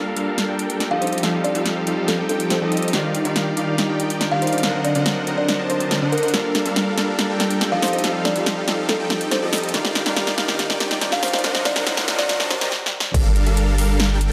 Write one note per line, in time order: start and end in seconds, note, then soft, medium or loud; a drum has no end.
0.00 0.14 G3 medium
0.00 0.14 A#3 medium
0.00 0.14 D4 medium
0.00 0.14 F4 medium
0.00 0.14 A4 medium
0.00 0.14 A#4 medium
0.00 0.14 F5 loud
0.15 0.45 G3 medium
0.15 0.46 G3 medium
0.15 0.46 A#3 medium
0.15 0.46 D4 medium
0.15 0.46 F4 medium
0.15 0.46 A4 medium
0.15 0.46 A#4 medium
0.15 0.46 F5 loud
0.15 closed hi-hat medium
0.38 snare soft
0.38 closed hi-hat medium
0.47 0.77 G3 medium
0.47 0.88 G3 medium
0.47 0.78 A#3 medium
0.47 0.88 D4 medium
0.47 0.78 D4 medium
0.47 0.78 F4 medium
0.47 0.88 A4 medium
0.47 0.78 A4 medium
0.47 0.88 A#4 medium
0.47 0.88 G5 medium
0.59 closed hi-hat medium
0.70 closed hi-hat medium
0.79 0.99 G3 medium
0.79 0.99 A#3 medium
0.79 0.99 D4 medium
0.79 0.99 F4 medium
0.79 1.00 A4 medium
0.79 snare soft
0.79 closed hi-hat medium
0.91 1.20 F3 medium
0.91 1.20 D#4 medium
0.91 1.20 G4 medium
0.91 1.20 A4 medium
0.91 1.20 D#5 loud
0.91 1.00 F5 medium
1.01 1.20 G3 medium
1.01 1.20 C4 medium
1.01 1.20 D#4 medium
1.01 1.21 F4 medium
1.01 1.21 A4 medium
1.01 1.08 C5 medium
1.01 closed hi-hat soft
1.07 closed hi-hat medium
1.13 1.19 C5 medium
1.13 closed hi-hat soft
1.18 closed hi-hat medium
1.22 1.52 F3 medium
1.22 1.52 G3 medium
1.22 1.52 C4 medium
1.22 1.52 D#4 medium
1.22 1.53 F4 medium
1.22 1.52 G4 medium
1.22 1.52 A4 medium
1.22 1.53 A4 loud
1.22 1.52 F5 medium
1.22 snare soft
1.22 closed hi-hat medium
1.44 1.57 D5 medium
1.44 closed hi-hat medium
1.54 1.84 F3 medium
1.54 1.84 G3 medium
1.54 1.84 C4 medium
1.54 1.84 D#4 medium
1.54 1.85 F4 medium
1.54 1.84 G4 medium
1.54 1.84 A4 medium
1.54 1.85 A4 medium
1.54 1.84 F5 loud
1.54 closed hi-hat medium
1.66 snare medium
1.66 closed hi-hat medium
1.86 2.16 F3 loud
1.86 2.16 G3 medium
1.86 2.16 C4 medium
1.86 2.16 D#4 medium
1.86 2.16 F4 medium
1.86 2.16 G4 medium
1.86 2.16 A4 medium
1.86 2.17 A4 medium
1.86 2.16 F5 loud
1.86 closed hi-hat medium
2.08 2.21 A4 medium
2.08 snare medium
2.08 closed hi-hat medium
2.18 2.59 F3 medium
2.18 2.48 G3 medium
2.18 2.48 C4 medium
2.18 2.48 D#4 medium
2.18 2.59 D#4 medium
2.18 2.48 F4 medium
2.18 2.59 G4 medium
2.18 2.59 A4 medium
2.18 2.49 A4 medium
2.18 2.59 G5 medium
2.29 2.43 A4 medium
2.29 closed hi-hat medium
2.40 closed hi-hat medium
2.49 2.69 G3 medium
2.49 2.69 C4 medium
2.49 2.69 D#4 medium
2.49 2.69 F4 medium
2.49 2.70 A4 medium
2.49 2.98 C5 medium
2.49 snare medium
2.49 closed hi-hat medium
2.61 2.91 F3 loud
2.61 2.91 D#4 medium
2.61 2.91 G4 medium
2.61 2.91 A4 medium
2.61 2.91 D#5 loud
2.71 2.90 G3 medium
2.71 2.90 C4 medium
2.71 2.91 D#4 medium
2.71 2.91 F4 medium
2.71 2.91 A4 medium
2.71 closed hi-hat soft
2.77 closed hi-hat medium
2.82 closed hi-hat soft
2.88 3.22 G3 medium
2.88 closed hi-hat medium
2.92 3.23 D#3 medium
2.92 3.22 D4 medium
2.92 3.22 D#4 medium
2.92 3.23 D#4 medium
2.92 3.23 F4 medium
2.92 3.23 G4 medium
2.92 3.23 A#4 loud
2.92 3.23 D5 medium
2.92 3.23 F5 medium
2.92 snare medium
2.92 closed hi-hat medium
3.15 closed hi-hat medium
3.24 3.54 D#3 medium
3.24 3.54 G3 medium
3.24 3.54 D4 medium
3.24 3.54 D#4 medium
3.24 3.55 F4 medium
3.24 3.54 G4 medium
3.24 3.55 A#4 medium
3.24 3.54 D5 medium
3.24 3.54 F5 loud
3.24 closed hi-hat medium
3.36 snare medium
3.36 closed hi-hat medium
3.56 3.86 D#3 loud
3.56 3.86 G3 medium
3.56 3.86 D4 medium
3.56 3.86 D#4 medium
3.56 3.87 F4 medium
3.56 3.86 G4 medium
3.56 3.87 A#4 medium
3.56 3.86 D5 medium
3.56 3.86 F5 loud
3.56 closed hi-hat medium
3.78 snare medium
3.78 closed hi-hat medium
3.88 4.29 D#3 medium
3.88 4.18 G3 medium
3.88 4.18 D4 medium
3.88 4.18 D#4 medium
3.88 4.29 D#4 medium
3.88 4.18 F4 medium
3.88 4.29 G4 medium
3.88 4.19 A#4 medium
3.88 4.29 D5 medium
3.88 4.29 G5 medium
4.00 closed hi-hat medium
4.10 closed hi-hat medium
4.20 4.39 G3 medium
4.20 4.39 D4 medium
4.20 4.39 D#4 medium
4.20 4.40 F4 medium
4.20 4.40 A#4 medium
4.20 snare medium
4.20 closed hi-hat medium
4.31 4.61 D#3 medium
4.31 4.61 D#4 medium
4.31 4.61 G4 medium
4.31 4.61 D5 medium
4.31 4.61 F5 loud
4.31 4.40 F5 medium
4.41 4.60 G3 medium
4.41 4.61 D4 medium
4.41 4.61 D#4 medium
4.41 4.61 F4 medium
4.41 4.61 A#4 medium
4.41 4.49 C5 medium
4.41 closed hi-hat soft
4.47 closed hi-hat medium
4.53 4.60 C5 medium
4.53 closed hi-hat soft
4.58 closed hi-hat medium
4.62 4.93 D3 medium
4.62 4.92 F#3 medium
4.62 4.92 C4 medium
4.62 4.93 D4 medium
4.62 4.93 D#4 medium
4.62 4.93 A#4 medium
4.62 4.93 A#4 loud
4.62 4.93 C5 medium
4.62 4.93 D#5 medium
4.62 4.93 F#5 medium
4.62 snare medium
4.62 closed hi-hat medium
4.84 4.98 D5 medium
4.84 closed hi-hat medium
4.94 5.25 D3 medium
4.94 5.24 F#3 medium
4.94 5.24 C4 medium
4.94 5.25 D4 medium
4.94 5.25 D#4 medium
4.94 5.25 A#4 medium
4.94 5.25 C5 medium
4.94 5.25 D#5 medium
4.94 5.25 F#5 loud
4.94 closed hi-hat medium
5.06 snare medium
5.06 closed hi-hat medium
5.26 5.57 D3 loud
5.26 5.56 F#3 medium
5.26 5.56 C4 medium
5.26 5.57 D4 medium
5.26 5.57 D#4 medium
5.26 5.57 A#4 medium
5.26 5.57 C5 medium
5.26 5.57 D#5 medium
5.26 5.57 F#5 loud
5.26 closed hi-hat medium
5.38 5.45 D5 medium
5.49 snare medium
5.49 closed hi-hat medium
5.58 5.99 D3 medium
5.58 5.78 F#3 medium
5.58 5.78 C4 medium
5.58 5.99 D4 medium
5.58 5.78 D4 medium
5.58 5.79 D#4 medium
5.58 5.99 A#4 medium
5.58 5.79 A#4 medium
5.58 5.99 C5 medium
5.58 5.99 D#5 medium
5.58 5.99 A5 medium
5.70 6.10 C5 medium
5.70 closed hi-hat medium
5.80 5.88 F#3 medium
5.80 5.88 C4 medium
5.80 5.89 D4 medium
5.80 5.89 D#4 medium
5.80 5.89 D5 medium
5.80 closed hi-hat medium
5.90 6.04 F#3 medium
5.90 6.04 C4 medium
5.90 6.04 D4 medium
5.90 6.05 D#4 medium
5.90 6.05 A#4 loud
5.90 snare medium
5.90 closed hi-hat medium
6.02 6.31 D3 loud
6.02 6.31 D4 medium
6.02 6.31 A#4 medium
6.02 6.31 C5 medium
6.02 6.31 D#5 medium
6.02 6.31 F#5 loud
6.12 6.19 A#4 medium
6.12 closed hi-hat soft
6.18 closed hi-hat medium
6.23 6.30 A#4 medium
6.23 closed hi-hat soft
6.28 closed hi-hat medium
6.33 6.63 G3 medium
6.33 6.63 A#3 medium
6.33 6.63 D4 medium
6.33 6.63 F4 medium
6.33 6.63 A4 medium
6.33 6.64 A4 loud
6.33 6.63 A#4 medium
6.33 6.63 F5 medium
6.33 snare medium
6.33 closed hi-hat medium
6.33 riser medium
6.55 snare medium
6.55 closed hi-hat medium
6.65 6.94 G3 medium
6.65 6.95 G3 medium
6.65 6.95 A#3 medium
6.65 6.95 D4 medium
6.65 6.95 F4 medium
6.65 6.95 A4 medium
6.65 6.95 A#4 medium
6.65 6.95 F5 loud
6.65 closed hi-hat medium
6.76 snare medium
6.76 closed hi-hat medium
6.96 7.26 G3 medium
6.96 7.27 G3 loud
6.96 7.26 A#3 medium
6.96 7.27 D4 medium
6.96 7.27 F4 medium
6.96 7.27 A4 medium
6.96 7.27 A#4 medium
6.96 7.27 F5 loud
6.96 snare medium
6.96 closed hi-hat medium
7.19 snare medium
7.19 closed hi-hat medium
7.28 7.58 G3 medium
7.28 7.69 G3 medium
7.28 7.59 A#3 medium
7.28 7.69 D4 medium
7.28 7.59 D4 medium
7.28 7.59 F4 medium
7.28 7.69 A4 medium
7.28 7.59 A4 medium
7.28 7.69 A#4 medium
7.28 7.69 G5 medium
7.40 snare medium
7.40 closed hi-hat medium
7.51 closed hi-hat medium
7.60 7.80 G3 medium
7.60 7.80 A#3 medium
7.60 7.80 D4 medium
7.60 7.80 F4 medium
7.60 7.81 A4 medium
7.60 snare medium
7.60 closed hi-hat medium
7.72 8.01 F3 loud
7.72 8.01 D#4 medium
7.72 8.01 G4 medium
7.72 8.01 A4 medium
7.72 8.01 D#5 loud
7.72 7.80 F5 medium
7.82 8.01 G3 medium
7.82 8.01 C4 medium
7.82 8.01 D#4 medium
7.82 8.02 F4 medium
7.82 8.02 A4 medium
7.82 7.90 C5 medium
7.82 snare medium
7.82 open hi-hat medium
7.88 closed hi-hat medium
7.93 8.00 C5 medium
7.93 closed hi-hat soft
7.99 closed hi-hat medium
8.03 8.33 F3 medium
8.03 8.33 G3 medium
8.03 8.33 C4 medium
8.03 8.33 D#4 medium
8.03 8.34 F4 medium
8.03 8.33 G4 medium
8.03 8.33 A4 medium
8.03 8.34 A4 loud
8.03 8.33 F5 medium
8.03 snare medium
8.03 closed hi-hat medium
8.25 8.38 D5 medium
8.25 snare medium
8.25 closed hi-hat medium
8.35 8.65 F3 medium
8.35 8.65 G3 medium
8.35 8.65 C4 medium
8.35 8.65 D#4 medium
8.35 8.65 F4 medium
8.35 8.65 G4 medium
8.35 8.65 A4 medium
8.35 8.66 A4 medium
8.35 8.65 F5 loud
8.35 closed hi-hat medium
8.46 snare medium
8.46 closed hi-hat medium
8.67 8.97 F3 loud
8.67 8.97 G3 medium
8.67 8.97 C4 medium
8.67 8.97 D#4 medium
8.67 8.97 F4 medium
8.67 8.97 G4 medium
8.67 8.97 A4 medium
8.67 8.98 A4 medium
8.67 8.97 F5 loud
8.67 snare medium
8.67 closed hi-hat medium
8.89 9.02 A4 medium
8.89 snare medium
8.89 closed hi-hat medium
8.99 9.40 F3 medium
8.99 9.28 G3 medium
8.99 9.29 C4 medium
8.99 9.29 D#4 medium
8.99 9.40 D#4 medium
8.99 9.29 F4 medium
8.99 9.40 G4 medium
8.99 9.40 A4 medium
8.99 9.29 A4 medium
8.99 9.40 G5 medium
9.10 9.24 A4 medium
9.10 snare medium
9.10 closed hi-hat medium
9.21 closed hi-hat medium
9.31 9.50 G3 medium
9.31 9.50 C4 medium
9.31 9.50 D#4 medium
9.31 9.51 F4 medium
9.31 9.51 A4 loud
9.31 9.78 C5 medium
9.31 snare medium
9.31 closed hi-hat medium
9.42 9.72 F3 loud
9.42 9.72 D#4 medium
9.42 9.72 G4 medium
9.42 9.72 A4 medium
9.42 9.72 D#5 loud
9.52 9.71 G3 medium
9.52 9.71 C4 medium
9.52 9.71 D#4 medium
9.52 9.72 F4 medium
9.52 9.72 A4 medium
9.52 snare medium
9.52 open hi-hat medium
9.58 closed hi-hat medium
9.63 closed hi-hat soft
9.69 closed hi-hat medium
9.73 10.03 D#3 medium
9.73 10.03 G3 medium
9.73 10.03 D4 medium
9.73 10.03 D#4 medium
9.73 10.04 F4 medium
9.73 10.03 G4 medium
9.73 10.04 A#4 loud
9.73 10.03 D5 medium
9.73 10.03 F5 medium
9.73 snare medium
9.73 closed hi-hat medium
9.85 snare medium
9.95 snare medium
9.95 closed hi-hat medium
10.05 10.35 D#3 medium
10.05 10.35 G3 medium
10.05 10.35 D4 medium
10.05 10.35 D#4 medium
10.05 10.35 F4 medium
10.05 10.35 G4 medium
10.05 10.36 A#4 loud
10.05 10.35 D5 medium
10.05 10.35 F5 loud
10.05 snare medium
10.05 closed hi-hat medium
10.17 snare medium
10.17 closed hi-hat medium
10.27 snare medium
10.37 10.67 D#3 loud
10.37 10.67 G3 medium
10.37 10.67 D4 medium
10.37 10.67 D#4 medium
10.37 10.67 F4 medium
10.37 10.67 G4 medium
10.37 10.68 A#4 loud
10.37 10.67 D5 medium
10.37 10.67 F5 loud
10.37 snare medium
10.37 closed hi-hat medium
10.48 snare medium
10.59 snare medium
10.59 closed hi-hat medium
10.68 11.10 D#3 medium
10.68 10.98 G3 medium
10.68 10.99 D4 medium
10.68 10.99 D#4 medium
10.68 11.10 D#4 medium
10.68 10.99 F4 medium
10.68 11.10 G4 medium
10.68 10.99 A#4 medium
10.68 11.10 D5 medium
10.68 11.10 G5 medium
10.68 snare medium
10.80 snare loud
10.80 closed hi-hat medium
10.91 snare medium
10.91 closed hi-hat medium
11.00 11.20 G3 medium
11.00 11.20 D4 medium
11.00 11.20 D#4 medium
11.00 11.21 F4 medium
11.00 11.21 A#4 loud
11.00 snare medium
11.00 closed hi-hat medium
11.12 11.42 D#3 loud
11.12 11.42 D#4 medium
11.12 11.42 G4 medium
11.12 11.42 D5 medium
11.12 11.21 F5 medium
11.12 11.42 F5 loud
11.12 snare medium
11.22 11.41 G3 medium
11.22 11.41 D4 medium
11.22 11.42 D#4 medium
11.22 11.42 F4 medium
11.22 11.42 A#4 medium
11.22 11.30 C5 medium
11.22 snare loud
11.22 open hi-hat loud
11.28 closed hi-hat medium
11.33 11.40 C5 medium
11.33 snare medium
11.33 closed hi-hat medium
11.39 closed hi-hat medium
11.43 11.74 D3 medium
11.43 11.73 F#3 medium
11.43 11.73 C4 medium
11.43 11.73 D4 medium
11.43 11.74 D4 medium
11.43 11.74 D#4 medium
11.43 11.74 A#4 medium
11.43 11.74 A#4 loud
11.43 11.74 C5 medium
11.43 11.74 D#5 medium
11.43 11.74 F#5 medium
11.43 snare loud
11.43 closed hi-hat medium
11.55 snare medium
11.65 11.79 D5 medium
11.65 snare loud
11.65 closed hi-hat medium
11.75 12.05 D3 medium
11.75 12.05 F#3 medium
11.75 12.05 C4 medium
11.75 12.05 D4 medium
11.75 12.06 D#4 medium
11.75 12.05 A#4 medium
11.75 12.06 A#4 loud
11.75 12.05 C5 medium
11.75 12.05 D#5 medium
11.75 12.05 F#5 loud
11.75 snare medium
11.75 closed hi-hat medium
11.87 snare loud
11.87 closed hi-hat medium
11.97 snare loud
12.07 12.37 D3 loud
12.07 12.37 F#3 medium
12.07 12.37 C4 medium
12.07 12.37 D4 medium
12.07 12.38 D#4 medium
12.07 12.37 A#4 medium
12.07 12.38 A#4 loud
12.07 12.37 C5 medium
12.07 12.37 D#5 medium
12.07 12.37 F#5 loud
12.07 snare loud
12.07 closed hi-hat medium
12.19 12.26 D5 medium
12.19 snare medium
12.29 12.36 D5 medium
12.29 snare loud
12.29 closed hi-hat medium
12.39 12.59 D3 medium
12.39 12.59 F#3 medium
12.39 12.59 C4 medium
12.39 12.59 D4 medium
12.39 12.59 D#4 medium
12.39 12.59 A#4 medium
12.39 12.60 A#4 medium
12.39 12.59 C5 medium
12.39 12.59 D#5 medium
12.39 12.59 A5 medium
12.39 snare medium
12.51 12.72 C5 medium
12.51 snare loud
12.51 closed hi-hat medium
12.60 12.72 D3 medium
12.60 12.69 F#3 medium
12.60 12.69 C4 medium
12.60 12.69 D4 medium
12.60 12.72 D4 medium
12.60 12.70 D#4 medium
12.60 12.72 A#4 medium
12.60 12.72 C5 medium
12.60 12.70 D5 loud
12.60 12.72 D#5 medium
12.60 12.72 A#5 loud
12.60 snare loud
12.60 closed hi-hat medium
12.72 snare medium
12.86 snare medium
13.00 snare loud
13.14 14.32 G1 medium
13.14 13.44 G3 medium
13.14 13.44 D4 medium
13.14 13.44 A4 medium
13.14 13.44 A#4 medium
13.14 13.44 F5 loud
13.14 kick loud
13.14 closed hi-hat medium
13.14 crash loud
13.36 closed hi-hat medium
13.46 13.76 G3 medium
13.46 13.76 D4 medium
13.46 13.76 A4 medium
13.46 13.76 A#4 medium
13.46 13.76 F5 loud
13.46 closed hi-hat medium
13.57 closed hi-hat medium
13.78 14.08 G3 loud
13.78 14.08 D4 medium
13.78 14.08 A4 medium
13.78 14.08 A#4 medium
13.78 14.08 F5 loud
13.78 open hi-hat medium
14.00 snare loud
14.00 closed hi-hat medium
14.10 14.32 G3 medium
14.10 14.32 D4 medium
14.10 14.32 A4 medium
14.10 14.32 A#4 medium
14.10 14.32 G5 medium
14.21 closed hi-hat medium